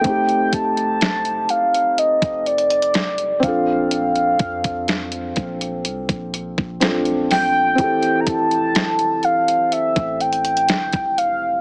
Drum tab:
HH |x-x-x-x-x-x-x-x-x-x-xxxxx-x-x---|x-x-x-x-x-x-x-x-x-x-x---x-x-o---|x-x-x-x-x-x-x-x-x-x-xxxxx-x-x---|
SD |--------o---------------o-------|--------o---------------o---o---|--------o---------------o-------|
BD |o---o-------------o---------o---|----o-o-----o-----o---o---------|o---o-------------o-------o-----|